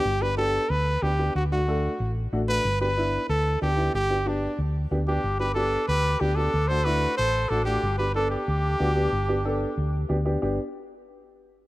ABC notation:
X:1
M:4/4
L:1/8
Q:1/4=185
K:G
V:1 name="Trumpet"
G B A2 B2 G2 | F F4 z2 B- | B B3 A2 G2 | G2 D2 z3 G- |
G B A2 B2 G A- | A c B2 c2 A G- | G B A G4- G- | G6 z2 |
z8 |]
V:2 name="Cor anglais"
z8 | z8 | z8 | z6 z D- |
D G D2 G2 D D- | D A F2 A2 D D- | D G D D4- D- | D6 z2 |
z8 |]
V:3 name="Upright piano"
z [B,DG] [B,DG] z3 [B,DG] [B,DG] | z [A,DF] [A,DA] z3 [A,DF] [A,DF] | z [B,DG] [B,DE] z3 [B,DG] [B,DE] | z [B,DG] [B,DG] z3 [B,DG] [B,DG] |
z [B,DG] [B,DG] z3 [B,DG] [B,DG] | z [A,DF] [A,DE] z3 [A,DF] [A,DF] | z [B,DG] [B,DA] z3 [B,DF] [B,DG] | z [B,DG] [B,DA] z3 [B,DG] [B,DG] |
[B,DG] z6 z |]
V:4 name="Fingered electric bass" clef=bass
G,,,4 D,,2 D,,2 | D,,4 A,,,2 A,,,2 | G,,,4 D,,2 D,,2 | G,,,4 D,,2 D,,2 |
G,,,4 D,,2 D,,2 | D,,4 A,,,2 A,,,2 | G,,,4 D,,2 D,,2 | G,,,4 D,,2 D,,2 |
G,,, z6 z |]